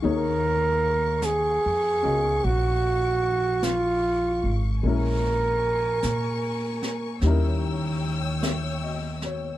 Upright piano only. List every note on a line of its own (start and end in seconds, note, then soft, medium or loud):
0.02 4.83 D#3 medium
0.02 4.83 A#3 soft
0.02 4.84 D#4 soft
0.02 4.84 G#4 soft
0.02 4.84 C#5 medium
2.03 4.83 C#4 soft
2.03 4.84 A#4 soft
2.03 4.84 D#5 soft
2.03 4.83 F5 soft
4.83 7.23 G#3 soft
4.83 7.24 A#3 soft
4.83 7.22 C#4 soft
4.83 7.24 E4 soft
4.89 7.26 A#4 medium
7.23 9.58 G3 soft
7.23 9.58 C#4 soft
7.23 9.58 D#4 soft
7.23 9.58 E4 soft
7.27 9.58 A#4 medium
8.43 9.19 E5 soft
8.83 9.46 D#5 soft
9.25 9.58 C#5 soft